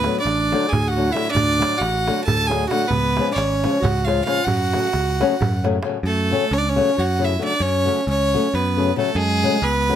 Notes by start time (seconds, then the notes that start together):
Already playing: B3 B4
0.04 D3 F#3 A3 D4, darbuka tek
0.20 D4 D5
0.25 A1, darbuka tek
0.52 D3 F#3 A3 D4, darbuka tek
0.63 G#4, darbuka tek
0.69 D2 G#5
0.73 darbuka dum
0.88 F#4 F#5
0.96 D3 F#3 A3 D4
1.06 darbuka tek
1.10 D3 E4 E5
1.15 F#3 A3 D4, darbuka tek
1.30 D4 D5
1.35 D2, darbuka dum
1.59 D3 F#3 A3 D4, darbuka tek
1.78 A1 F#4 F#5, darbuka tek
2.07 D3 F#3 A3 D4, darbuka tek
2.18 darbuka tek
2.24 D2 A4 A5
2.28 darbuka dum
2.47 D3 F#3 A3 G#4 G#5
2.51 D4, darbuka tek
2.61 darbuka tek
2.67 D3 F#4 F#5, darbuka tek
2.72 F#3 A3 D4
2.88 C#2 B3 B4, darbuka dum
3.04 darbuka tek
3.17 C#3 F3 G#3 C#4, darbuka tek
3.30 D4 D5
3.34 G#1 C#4 C#5, darbuka tek
3.64 C#3 F3 G#3 C#4, darbuka tek
3.75 darbuka tek
3.80 C#2 F#4 F#5
3.85 darbuka dum
4.05 C#3 F3 G#3 C#4 F4 F5, darbuka tek
4.17 darbuka tek
4.25 C#3 F3 G#3 C#4 F4 F5, darbuka tek
4.45 F#2 F#4 F#5, darbuka dum
4.61 darbuka tek
4.73 C#3 F#3 A3 C#4, darbuka tek
4.84 darbuka tek
4.93 C#2, darbuka tek
5.20 C#3 F#3 A3 C#4, darbuka tek
5.32 darbuka tek
5.41 F#2, darbuka dum
5.54 darbuka tek
5.64 C#3 F#3 A3 C#4, darbuka tek
5.74 darbuka tek
5.83 C#3 F#3 A3 C#4, darbuka tek
6.03 F#2 A3 A4
6.31 C#3 F#3 A3 C#4
6.51 C#2 C#4 C#5
6.58 D4 D5
6.68 C#4 C#5
6.76 C#3 F#3 A3 C#4
6.97 F#2 F#4 F#5
7.19 C#3 F#3 A3 C#4 E4
7.25 E5
7.39 C#3 F#3 A3 C#4 D4
7.44 D5
7.60 F#2 C#4 C#5
7.85 C#3 F#3 A3 C#4
8.06 C#2 C#4
8.10 C#5
8.34 C#3 F#3 A3 C#4
8.54 F#2 B3 B4
8.77 C#3 F#3 A3 C#4
8.96 C#3 F#3 A3 C#4 A4
9.15 F#2 G#3 G#4
9.43 C#3 F#3 A3 C#4
9.62 C#2 B3 B4
9.89 C#3 F#3 A3 C#4